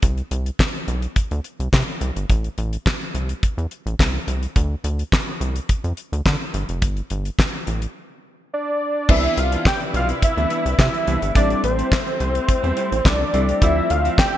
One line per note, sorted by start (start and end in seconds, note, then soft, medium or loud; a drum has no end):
0.02 0.22 C2 medium
0.02 kick loud
0.02 closed hi-hat medium
0.18 closed hi-hat soft
0.31 0.51 C2 medium
0.31 closed hi-hat medium
0.46 closed hi-hat soft
0.59 kick loud
0.59 snare loud
0.59 clap medium
0.88 1.07 B1 loud
0.88 closed hi-hat medium
1.02 closed hi-hat medium
1.16 kick loud
1.16 closed hi-hat loud
1.31 1.40 D2 medium
1.31 closed hi-hat soft
1.44 closed hi-hat medium
1.60 1.69 C2 medium
1.60 closed hi-hat soft
1.73 1.83 C3 medium
1.73 kick loud
1.73 snare loud
1.73 clap medium
2.01 2.11 C2 medium
2.01 closed hi-hat medium
2.16 2.25 G1 medium
2.16 closed hi-hat medium
2.30 2.49 A1 loud
2.30 kick loud
2.30 closed hi-hat medium
2.44 closed hi-hat soft
2.58 2.77 A1 loud
2.58 closed hi-hat medium
2.73 closed hi-hat soft
2.86 kick loud
2.86 snare loud
2.86 clap medium
3.01 closed hi-hat soft
3.14 3.34 C2 medium
3.14 closed hi-hat medium
3.29 closed hi-hat medium
3.43 kick loud
3.43 closed hi-hat medium
3.58 3.67 E2 medium
3.58 closed hi-hat soft
3.71 closed hi-hat medium
3.86 3.95 A1 medium
3.86 closed hi-hat soft
3.99 4.19 C2 medium
3.99 kick loud
3.99 snare loud
3.99 clap medium
4.27 4.47 C2 medium
4.27 closed hi-hat medium
4.43 closed hi-hat medium
4.56 4.75 D2 loud
4.56 kick loud
4.56 closed hi-hat medium
4.84 5.03 D2 loud
4.84 closed hi-hat medium
4.99 closed hi-hat soft
5.12 kick loud
5.12 snare loud
5.12 clap medium
5.41 5.60 C2 medium
5.41 closed hi-hat medium
5.56 closed hi-hat medium
5.69 kick loud
5.69 closed hi-hat medium
5.84 5.93 F2 medium
5.84 closed hi-hat soft
5.97 closed hi-hat medium
6.12 6.21 D2 medium
6.12 closed hi-hat soft
6.26 6.36 D3 medium
6.26 kick loud
6.26 snare medium
6.26 clap medium
6.54 6.64 G1 loud
6.54 closed hi-hat medium
6.69 6.84 F1 medium
6.69 closed hi-hat medium
6.82 7.02 G1 loud
6.82 kick loud
6.82 closed hi-hat medium
6.97 closed hi-hat soft
7.10 7.30 G1 medium
7.10 closed hi-hat medium
7.25 closed hi-hat soft
7.39 kick loud
7.39 snare loud
7.39 clap medium
7.67 7.87 A1 medium
7.67 closed hi-hat medium
7.82 closed hi-hat medium
8.53 9.12 D5 medium
9.08 9.28 C2 loud
9.08 11.33 C3 medium
9.08 9.35 E3 medium
9.08 13.58 G3 medium
9.08 9.35 B3 medium
9.08 11.31 C4 medium
9.08 11.33 D4 medium
9.08 9.36 D4 loud
9.08 11.33 E4 medium
9.08 11.31 E4 medium
9.08 11.31 G4 medium
9.08 11.33 B4 medium
9.08 11.32 B4 medium
9.08 11.32 D5 medium
9.08 9.41 E5 loud
9.08 kick loud
9.08 crash loud
9.37 9.56 C2 loud
9.37 9.66 F5 medium
9.37 muted clean electric guitar stroke soft
9.37 closed hi-hat medium
9.52 9.64 E3 medium
9.52 9.64 B3 medium
9.52 9.64 D4 medium
9.52 closed hi-hat medium
9.65 9.80 G5 medium
9.65 muted clean electric guitar stroke soft
9.65 kick loud
9.65 snare loud
9.65 clap medium
9.80 muted clean electric guitar stroke soft
9.80 closed hi-hat soft
9.94 10.13 B1 loud
9.94 10.08 F5 medium
9.94 closed hi-hat medium
10.09 muted clean electric guitar stroke soft
10.09 closed hi-hat medium
10.22 10.76 E5 medium
10.22 muted clean electric guitar stroke soft
10.22 kick loud
10.22 closed hi-hat loud
10.37 10.46 D2 medium
10.37 10.49 E3 medium
10.37 10.50 B3 medium
10.37 10.50 D4 medium
10.37 closed hi-hat soft
10.50 10.63 E3 medium
10.50 10.64 B3 medium
10.50 10.64 D4 medium
10.50 closed hi-hat medium
10.65 10.74 C2 medium
10.65 muted clean electric guitar stroke soft
10.65 closed hi-hat medium
10.79 10.89 C3 medium
10.79 11.32 E5 loud
10.79 kick loud
10.79 snare loud
10.79 clap medium
10.94 muted clean electric guitar stroke medium
10.94 closed hi-hat soft
11.06 11.18 C2 loud
11.06 11.22 E3 medium
11.06 11.21 B3 medium
11.06 11.21 D4 medium
11.06 closed hi-hat medium
11.22 11.31 G1 loud
11.22 11.34 E3 medium
11.22 11.34 B3 medium
11.22 11.33 E4 medium
11.22 closed hi-hat medium
11.35 11.55 A1 loud
11.35 11.61 G3 medium
11.35 14.38 A3 medium
11.35 13.29 C4 medium
11.35 13.59 C4 medium
11.35 11.62 C4 medium
11.35 13.29 E4 medium
11.35 11.62 E4 medium
11.35 13.29 G4 medium
11.35 13.30 A4 medium
11.35 11.62 D5 loud
11.35 13.30 E5 medium
11.35 kick loud
11.35 closed hi-hat loud
11.50 closed hi-hat soft
11.63 11.83 A1 loud
11.63 13.08 C5 medium
11.63 muted clean electric guitar stroke soft
11.63 closed hi-hat medium
11.78 11.90 G3 medium
11.78 11.90 C4 medium
11.78 11.90 E4 medium
11.78 closed hi-hat soft
11.92 kick loud
11.92 snare loud
11.92 clap medium
12.07 muted clean electric guitar stroke medium
12.07 closed hi-hat soft
12.20 12.40 C2 medium
12.20 closed hi-hat medium
12.35 muted clean electric guitar stroke medium
12.35 closed hi-hat medium
12.48 muted clean electric guitar stroke soft
12.48 kick loud
12.48 closed hi-hat loud
12.63 12.73 E2 medium
12.63 12.75 G3 medium
12.63 12.76 C4 medium
12.63 12.77 E4 medium
12.63 closed hi-hat soft
12.77 12.90 G3 medium
12.77 12.90 C4 medium
12.77 12.90 E4 medium
12.77 closed hi-hat medium
12.92 13.01 A1 loud
12.92 muted clean electric guitar stroke soft
12.92 closed hi-hat medium
13.05 13.24 C2 medium
13.05 13.62 D5 loud
13.05 kick loud
13.05 snare loud
13.05 clap medium
13.20 muted clean electric guitar stroke soft
13.33 13.53 C2 medium
13.33 13.48 G3 medium
13.33 13.60 C4 medium
13.33 13.48 C4 medium
13.33 13.61 E4 soft
13.33 13.48 E4 medium
13.33 13.62 G4 soft
13.33 13.61 A4 soft
13.33 13.62 E5 medium
13.33 closed hi-hat medium
13.48 13.61 G3 soft
13.48 13.60 C4 medium
13.48 13.60 G4 medium
13.48 closed hi-hat medium
13.61 13.81 D2 loud
13.61 14.38 D3 medium
13.61 14.38 F3 medium
13.61 13.88 F3 medium
13.61 14.38 C4 medium
13.61 13.88 C4 medium
13.61 14.38 E4 medium
13.61 13.88 E4 medium
13.61 14.38 F4 medium
13.61 14.38 A4 medium
13.61 14.38 D5 medium
13.61 14.38 E5 medium
13.61 13.92 E5 loud
13.61 kick loud
13.61 closed hi-hat loud
13.90 14.10 D2 loud
13.90 14.19 F5 medium
13.90 muted clean electric guitar stroke soft
13.90 closed hi-hat medium
14.05 14.17 F3 medium
14.05 14.17 C4 medium
14.05 14.16 E4 medium
14.05 closed hi-hat medium
14.18 14.38 G5 loud
14.18 kick loud
14.18 snare loud
14.18 clap medium
14.33 muted clean electric guitar stroke soft